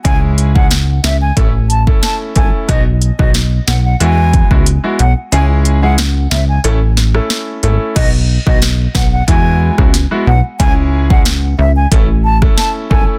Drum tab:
CC |----------------|----------------|----------------|x---------------|
HH |x-x-x-x-x-x-x-x-|x-x-x-x-x-x-x-x-|x-x-x-x-x-x-x-x-|x---x---x---x---|
SD |----o-o-----o---|----o-o---------|----o-o---oro---|----o-o----ro---|
BD |o--o----o--o--o-|o--o------oo----|----------------|o--o--o-o--o----|

CC |----------------|
HH |x---x---x---x---|
SD |----o------ro---|
BD |o--o----o--o--o-|